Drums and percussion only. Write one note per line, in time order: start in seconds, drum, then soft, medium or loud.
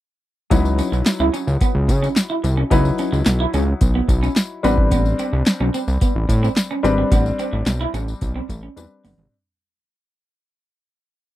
0.51 kick loud
0.51 closed hi-hat loud
0.51 tambourine medium
0.65 tambourine soft
0.79 closed hi-hat medium
0.79 tambourine medium
0.93 tambourine soft
1.06 snare loud
1.06 clap medium
1.06 closed hi-hat loud
1.06 tambourine medium
1.34 closed hi-hat medium
1.34 tambourine medium
1.48 tambourine soft
1.61 kick loud
1.61 closed hi-hat medium
1.61 tambourine medium
1.88 kick medium
1.88 closed hi-hat medium
1.88 tambourine medium
2.04 tambourine soft
2.16 snare loud
2.16 clap medium
2.16 closed hi-hat medium
2.16 tambourine loud
2.44 closed hi-hat medium
2.44 tambourine medium
2.71 kick loud
2.71 closed hi-hat medium
2.71 tambourine medium
2.85 tambourine soft
2.98 closed hi-hat medium
2.98 tambourine soft
3.13 tambourine soft
3.26 snare loud
3.26 clap medium
3.26 closed hi-hat loud
3.26 tambourine medium
3.54 closed hi-hat medium
3.54 tambourine medium
3.81 kick loud
3.81 closed hi-hat loud
3.81 tambourine medium
4.09 kick medium
4.09 closed hi-hat medium
4.09 tambourine soft
4.23 tambourine soft
4.36 snare loud
4.36 clap medium
4.36 closed hi-hat medium
4.36 tambourine loud
4.64 closed hi-hat medium
4.64 tambourine medium
4.78 kick medium
4.91 kick loud
4.91 closed hi-hat medium
4.91 tambourine medium
5.05 tambourine soft
5.19 closed hi-hat medium
5.19 tambourine soft
5.46 snare loud
5.46 clap medium
5.46 closed hi-hat medium
5.46 tambourine medium
5.74 closed hi-hat medium
5.74 tambourine soft
5.88 tambourine soft
6.01 kick loud
6.01 closed hi-hat medium
6.01 tambourine medium
6.29 kick medium
6.29 closed hi-hat medium
6.29 tambourine medium
6.44 tambourine soft
6.56 snare medium
6.56 clap medium
6.56 closed hi-hat medium
6.56 tambourine loud
6.85 closed hi-hat medium
6.85 tambourine medium
7.12 kick loud
7.12 closed hi-hat loud
7.12 tambourine medium
7.26 tambourine soft
7.39 closed hi-hat medium
7.39 tambourine soft
7.66 snare loud
7.66 clap medium
7.66 closed hi-hat medium
7.66 tambourine medium
7.94 closed hi-hat medium
7.94 tambourine soft
8.08 tambourine soft
8.21 kick loud
8.21 closed hi-hat medium
8.21 tambourine soft
8.49 kick medium
8.49 closed hi-hat medium
8.49 tambourine medium
8.77 closed hi-hat medium
8.77 high tom medium
8.77 tambourine loud
9.04 mid tom medium
9.04 open hi-hat medium
9.04 tambourine soft
9.18 floor tom medium